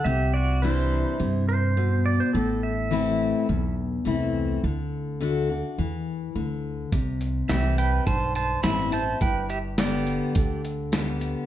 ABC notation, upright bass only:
X:1
M:4/4
L:1/8
Q:1/4=105
K:Clyd
V:1 name="Upright bass" clef=bass
C,,4 G,,4 | A,,,4 B,,,2 C,,2 | D,,4 E,,2 D,,2 | C,,2 C,,2 B,,,2 A,,,2 |
G,,,4 D,,4 |]